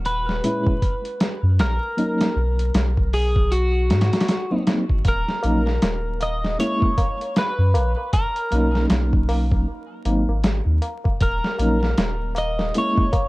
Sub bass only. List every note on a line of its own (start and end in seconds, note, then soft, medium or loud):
0.00 0.40 D#1 medium
1.43 1.61 F#2 loud
1.59 1.79 A#1 loud
2.36 2.71 B1 medium
2.74 3.91 B1 medium
3.89 4.10 G#2 medium
4.89 5.03 G#1 medium
5.05 5.25 D#1 loud
5.44 5.78 A#1 medium
5.83 6.56 D#1 medium
7.58 7.77 F#2 loud
7.75 7.95 A#1 loud
8.52 8.86 B1 medium
8.91 9.64 B1 medium
10.05 10.25 G#1 loud
10.28 10.61 G#1 loud
10.66 10.80 D#2 loud
11.21 11.41 D#1 loud
11.59 11.94 A#1 medium
11.98 12.71 D#1 medium